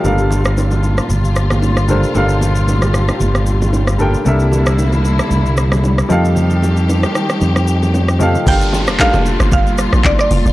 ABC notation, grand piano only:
X:1
M:4/4
L:1/8
Q:"Swing 16ths" 1/4=114
K:Gm
V:1 name="Grand piano"
[G,DABf]3 z4 [G,DABc] | [G,DABf]3 z4 [G,DABg] | [C,G,DAB=e]3 z4 [F,_EGAf]- | [F,EGAf]2 z4 z [F,EGAf] |
[G,DABf]2 [G,DABf]3 z3 |]